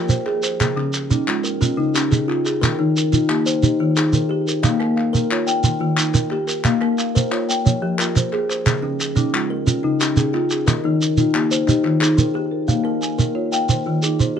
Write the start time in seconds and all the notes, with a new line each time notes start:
Already playing: F4 G4 A#4
0.08 F3 C5, clap, shekere
0.26 G#4, clap
0.43 C5, clap, shekere
0.60 C#3 G#4, clap, shekere
0.77 C#3 C#4, clap
0.93 G#4, clap, shekere
1.10 C#4 D#4, shekere
1.28 G#3 F4, clap
1.44 A#4, shekere
1.61 C#4 F4, shekere
1.77 C#3 D#4
1.94 C#4 G4, clap, shekere
2.11 C#3 G#4, clap, shekere
2.28 F4, clap
2.45 G#4, clap, shekere
2.61 D#3 A#4, clap, shekere
2.79 D#3 D#4
2.96 A#4, shekere
3.12 D#4 F4, shekere
3.29 A#3 G4, clap
3.46 C5, shekere
3.63 D#4 G4, shekere
3.80 D#3 F4
3.96 D#4 G#4, clap, shekere
4.13 D#3 A#4, shekere
4.29 G4
4.47 A#4, shekere
4.63 A#3 F5, clap, shekere
4.80 A#3 A#4, clap
4.96 F5, clap
5.13 A#4, shekere
5.31 F4 C#5, clap
5.47 G5, shekere
5.64 D#3, shekere
5.80 D#3 F4
5.97 D#4, clap, shekere
6.13 D#3 A#4, clap, shekere
6.31 G4, clap
6.47 A#4, clap, shekere
6.64 A#3 F5, clap, shekere
6.81 A#3 A#4, clap
6.98 F5, clap, shekere
7.15 A#4 C5, shekere
7.31 F4 C#5, clap
7.49 G5, shekere
7.65 F3 C#5, shekere
7.82 F3 G4
7.98 F4 A#4, clap, shekere
8.15 F3 C5, clap, shekere
8.33 G#4, clap
8.50 C5, clap, shekere
8.66 C#3 G#4, clap, shekere
8.82 C#3 C#4
9.01 G#4, clap, shekere
9.16 C#4 D#4, shekere
9.34 G#3 F4, clap
9.50 A#4
9.67 C#4 F4, shekere
9.83 C#3 D#4
10.00 C#4 G4, clap, shekere
10.16 C#3 G#4, clap, shekere
10.33 F4, clap
10.50 G#4, clap, shekere
10.67 D#3 A#4, clap, shekere
10.84 D#3 D#4
11.02 A#4, shekere
11.17 D#4 F4, shekere
11.35 A#3 G4, clap
11.51 C5, shekere
11.67 D#4 G4, clap, shekere
11.83 D#3 F4, clap
12.00 D#4 G#4, clap, shekere
12.17 D#3 A#4, shekere
12.34 G4
12.51 A#4
12.68 A#3 F5, shekere
12.84 A#3 A#4
13.01 G#5, shekere
13.18 A#4, shekere
13.35 F4 C#5
13.52 F5 G5, shekere
13.69 D#3 C5, shekere
13.86 D#3 F4
14.03 D#4 G#4, shekere
14.19 D#3 C5, shekere
14.36 G4